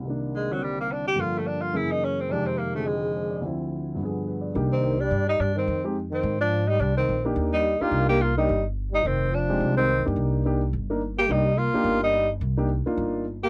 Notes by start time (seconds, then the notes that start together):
0.00 C2 C3
0.05 D#3 A#3
0.10 D4
0.36 G#3
0.50 C3 D3 F#3 G3 C4
0.63 G3
0.80 A#3
0.92 D4
1.07 G4
1.15 G2 D3 F3 A#3
1.20 F4 A4
1.38 A3
1.47 D4
1.61 F4
1.74 F#2 C#3 E3 A#3 E4 G#4
1.91 D#4
2.04 C#4
2.20 C4
2.29 F2 C3 D#3 G#3 D4
2.33 G4
2.46 C4
2.58 A#3
2.75 D3 F3 A3 C4 G#4
2.87 G#3
3.02 G#4
3.16 C5
3.30 D5
3.41 D2 D3 F3 C4
3.46 E4
3.95 G2 D3
4.00 F3 B3
4.05 G#4
4.28 B4
4.41 D5
4.55 C2 A#3 D4 D#4 G4
4.71 D#3 C4
4.99 G3 D4
5.11 G2
5.27 G3 D#4
5.40 G2 G3 D4
5.55 D#3 C4
5.68 F2
5.84 G#3 C4 D#4 G4
6.11 D#3 C4
6.23 G#2
6.41 F3 D4
6.68 G3 D#4
6.80 C2 G3 D4
6.97 D#3 C4
7.09 A#1
7.25 A#3 D4 D#4 G4
7.36 D#2
7.53 G3 D#4
7.81 A#3 D4 D#4 F4 G4, muted upright bass stroke
7.91 C2
8.09 A#3 G4
8.21 A#3 F4
8.37 G3 A#3 D4 D#4 G4
8.49 G1
8.92 G3 D#4
9.04 F1 D#3 C4
9.32 F3 D4
9.49 G#3 C4 D#4 G4
9.60 C2
9.77 D#3 C4
9.99 F2
10.05 G2 A#3 D4 D#4 G4
10.16 C2
10.45 A#3 D4 D#4 G4
10.73 G1
10.90 A#3 D4 D#4 A#4
11.18 A#3 G4
11.29 C2 G3 A#3 D4 D#4 G4
11.58 A#3 F4
11.74 A#3 D4 D#4 G4, muted upright bass stroke
11.84 G1
12.02 G3 D#4
12.41 C2
12.57 A#3 D4 D#4 G4
12.86 A#3 D4 D#4 F4, muted upright bass stroke
12.97 G1
13.43 A#3 G4